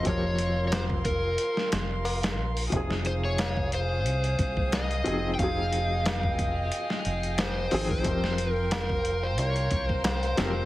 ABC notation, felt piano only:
X:1
M:4/4
L:1/8
Q:"Swing 16ths" 1/4=90
K:Fm
V:1 name="Felt piano"
[F,CGB]6- [F,CGB] z | [C,F,EA]6- [C,F,EA] [F,CEA] | [F,CEA]6- [F,CEA] [F,CEA] | [F,CGB]6- [F,CGB] [F,CGB] |]